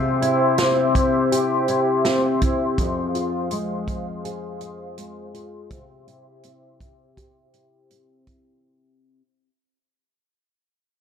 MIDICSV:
0, 0, Header, 1, 4, 480
1, 0, Start_track
1, 0, Tempo, 731707
1, 1824, Time_signature, 4, 2, 24, 8
1, 7221, End_track
2, 0, Start_track
2, 0, Title_t, "Analog synth pad"
2, 0, Program_c, 0, 89
2, 0, Note_on_c, 0, 67, 61
2, 0, Note_on_c, 0, 72, 65
2, 0, Note_on_c, 0, 76, 59
2, 0, Note_on_c, 0, 84, 72
2, 1806, Note_off_c, 0, 67, 0
2, 1806, Note_off_c, 0, 76, 0
2, 1824, Note_on_c, 0, 68, 65
2, 1824, Note_on_c, 0, 77, 63
2, 3725, Note_off_c, 0, 68, 0
2, 3725, Note_off_c, 0, 77, 0
2, 3753, Note_on_c, 0, 76, 52
2, 3754, Note_on_c, 0, 67, 66
2, 5637, Note_off_c, 0, 72, 0
2, 5638, Note_off_c, 0, 84, 0
2, 5649, Note_off_c, 0, 67, 0
2, 5649, Note_off_c, 0, 76, 0
2, 7221, End_track
3, 0, Start_track
3, 0, Title_t, "Twelve-string acoustic guitar"
3, 0, Program_c, 1, 25
3, 0, Note_on_c, 1, 48, 68
3, 142, Note_on_c, 1, 64, 47
3, 383, Note_on_c, 1, 60, 52
3, 617, Note_off_c, 1, 64, 0
3, 625, Note_on_c, 1, 64, 48
3, 865, Note_on_c, 1, 67, 52
3, 1098, Note_off_c, 1, 64, 0
3, 1106, Note_on_c, 1, 64, 53
3, 1345, Note_off_c, 1, 60, 0
3, 1348, Note_on_c, 1, 60, 55
3, 1578, Note_off_c, 1, 64, 0
3, 1586, Note_on_c, 1, 64, 47
3, 1822, Note_off_c, 1, 48, 0
3, 1829, Note_on_c, 1, 41, 71
3, 1872, Note_off_c, 1, 67, 0
3, 1873, Note_off_c, 1, 64, 0
3, 2065, Note_on_c, 1, 65, 49
3, 2302, Note_off_c, 1, 60, 0
3, 2304, Note_on_c, 1, 56, 53
3, 2536, Note_off_c, 1, 65, 0
3, 2785, Note_on_c, 1, 68, 50
3, 3024, Note_on_c, 1, 65, 54
3, 3254, Note_off_c, 1, 56, 0
3, 3262, Note_on_c, 1, 56, 49
3, 3495, Note_off_c, 1, 65, 0
3, 3503, Note_on_c, 1, 65, 51
3, 3742, Note_on_c, 1, 48, 72
3, 3746, Note_off_c, 1, 41, 0
3, 3791, Note_off_c, 1, 56, 0
3, 3791, Note_off_c, 1, 65, 0
3, 3792, Note_off_c, 1, 68, 0
3, 3982, Note_on_c, 1, 64, 50
3, 4226, Note_on_c, 1, 60, 50
3, 4462, Note_off_c, 1, 64, 0
3, 4465, Note_on_c, 1, 64, 50
3, 4704, Note_on_c, 1, 67, 54
3, 4943, Note_off_c, 1, 64, 0
3, 4945, Note_on_c, 1, 64, 52
3, 5185, Note_off_c, 1, 60, 0
3, 5188, Note_on_c, 1, 60, 50
3, 5424, Note_off_c, 1, 64, 0
3, 5426, Note_on_c, 1, 64, 44
3, 6038, Note_off_c, 1, 48, 0
3, 6041, Note_off_c, 1, 64, 0
3, 6042, Note_off_c, 1, 60, 0
3, 6042, Note_off_c, 1, 67, 0
3, 7221, End_track
4, 0, Start_track
4, 0, Title_t, "Drums"
4, 146, Note_on_c, 9, 42, 45
4, 212, Note_off_c, 9, 42, 0
4, 380, Note_on_c, 9, 42, 63
4, 384, Note_on_c, 9, 38, 98
4, 446, Note_off_c, 9, 42, 0
4, 449, Note_off_c, 9, 38, 0
4, 624, Note_on_c, 9, 36, 72
4, 626, Note_on_c, 9, 42, 49
4, 690, Note_off_c, 9, 36, 0
4, 691, Note_off_c, 9, 42, 0
4, 867, Note_on_c, 9, 42, 68
4, 933, Note_off_c, 9, 42, 0
4, 1102, Note_on_c, 9, 42, 40
4, 1167, Note_off_c, 9, 42, 0
4, 1344, Note_on_c, 9, 38, 89
4, 1345, Note_on_c, 9, 42, 59
4, 1409, Note_off_c, 9, 38, 0
4, 1410, Note_off_c, 9, 42, 0
4, 1585, Note_on_c, 9, 42, 46
4, 1587, Note_on_c, 9, 36, 68
4, 1650, Note_off_c, 9, 42, 0
4, 1652, Note_off_c, 9, 36, 0
4, 1825, Note_on_c, 9, 36, 96
4, 1825, Note_on_c, 9, 42, 61
4, 1891, Note_off_c, 9, 36, 0
4, 1891, Note_off_c, 9, 42, 0
4, 2066, Note_on_c, 9, 42, 43
4, 2131, Note_off_c, 9, 42, 0
4, 2301, Note_on_c, 9, 42, 53
4, 2367, Note_off_c, 9, 42, 0
4, 2544, Note_on_c, 9, 36, 74
4, 2545, Note_on_c, 9, 42, 43
4, 2609, Note_off_c, 9, 36, 0
4, 2610, Note_off_c, 9, 42, 0
4, 2788, Note_on_c, 9, 42, 69
4, 2853, Note_off_c, 9, 42, 0
4, 3022, Note_on_c, 9, 42, 44
4, 3088, Note_off_c, 9, 42, 0
4, 3265, Note_on_c, 9, 42, 61
4, 3330, Note_off_c, 9, 42, 0
4, 3506, Note_on_c, 9, 42, 45
4, 3572, Note_off_c, 9, 42, 0
4, 3744, Note_on_c, 9, 36, 88
4, 3746, Note_on_c, 9, 42, 63
4, 3810, Note_off_c, 9, 36, 0
4, 3811, Note_off_c, 9, 42, 0
4, 3987, Note_on_c, 9, 42, 39
4, 4052, Note_off_c, 9, 42, 0
4, 4221, Note_on_c, 9, 42, 56
4, 4287, Note_off_c, 9, 42, 0
4, 4464, Note_on_c, 9, 36, 65
4, 4467, Note_on_c, 9, 42, 43
4, 4530, Note_off_c, 9, 36, 0
4, 4533, Note_off_c, 9, 42, 0
4, 4706, Note_on_c, 9, 36, 66
4, 4708, Note_on_c, 9, 42, 67
4, 4771, Note_off_c, 9, 36, 0
4, 4774, Note_off_c, 9, 42, 0
4, 4943, Note_on_c, 9, 42, 39
4, 5009, Note_off_c, 9, 42, 0
4, 5186, Note_on_c, 9, 42, 57
4, 5252, Note_off_c, 9, 42, 0
4, 5425, Note_on_c, 9, 42, 45
4, 5426, Note_on_c, 9, 36, 69
4, 5490, Note_off_c, 9, 42, 0
4, 5492, Note_off_c, 9, 36, 0
4, 7221, End_track
0, 0, End_of_file